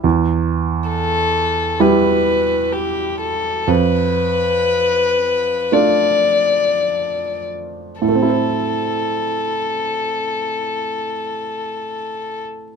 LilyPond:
<<
  \new Staff \with { instrumentName = "Violin" } { \time 4/4 \key a \minor \tempo 4 = 56 r4 a'4 b'4 g'8 a'8 | b'2 d''4. r8 | a'1 | }
  \new Staff \with { instrumentName = "Grand piano" } { \time 4/4 \key a \minor e,2 <g e' g'>2 | f,2 <a d' f'>2 | <a, a c' e' c''>1 | }
>>